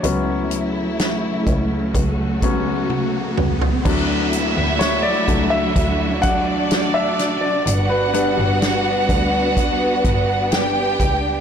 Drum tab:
CC |----------------|x---------------|----------------|
HH |x-x-x-x-x-x-----|--x-x-x-x-x-x-x-|x-x-x-x-x-x-x-x-|
SD |----o-----------|----o-------o-o-|----o-------o---|
T1 |------------o---|----------------|----------------|
T2 |--------------o-|----------------|----------------|
FT |---------------o|----------------|----------------|
BD |------o-o-o-----|o-----o-o-o-----|------o-o-o---o-|